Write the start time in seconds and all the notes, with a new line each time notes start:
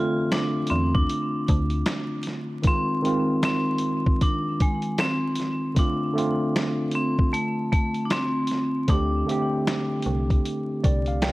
Already playing: D3 A3 C4 F4
0.32 D4, finger snap, snare, closed hi-hat
0.67 C4, closed hi-hat
0.71 E2
0.94 D4, kick
1.09 closed hi-hat
1.48 D2, kick, closed hi-hat
1.70 closed hi-hat
1.86 finger snap, snare, closed hi-hat
2.23 closed hi-hat
2.27 snare
2.62 D#3 G#3 C4, kick, closed hi-hat
2.68 C4 F4
3.02 D#3 G#3 C4, closed hi-hat
3.07 F4
3.43 C4, finger snap, snare, closed hi-hat
3.78 closed hi-hat
4.06 kick
4.21 D4, kick, closed hi-hat
4.60 G#3, kick, closed hi-hat
4.82 closed hi-hat
4.98 C4, finger snap, snare, closed hi-hat
5.35 closed hi-hat
5.40 snare
5.74 D3 A3 C4, kick, closed hi-hat
5.79 D4 F4
6.13 D3 A3 C4
6.18 F4, closed hi-hat
6.56 finger snap, snare, closed hi-hat
6.91 C4, closed hi-hat
7.19 kick
7.33 A3, closed hi-hat
7.72 A3, kick, closed hi-hat
7.94 closed hi-hat
8.05 D4
8.10 C4, finger snap, snare, closed hi-hat
8.47 closed hi-hat
8.51 snare
8.87 D2 D3 A3 C4 D4, kick, closed hi-hat
8.92 G4
9.26 D3 A3 C4, closed hi-hat
9.31 G4
9.67 finger snap, snare, closed hi-hat
10.02 C2, closed hi-hat
10.30 kick, closed hi-hat
10.45 closed hi-hat
10.84 C2 D5, kick, closed hi-hat
11.06 F5, closed hi-hat
11.22 G5, finger snap, snare, closed hi-hat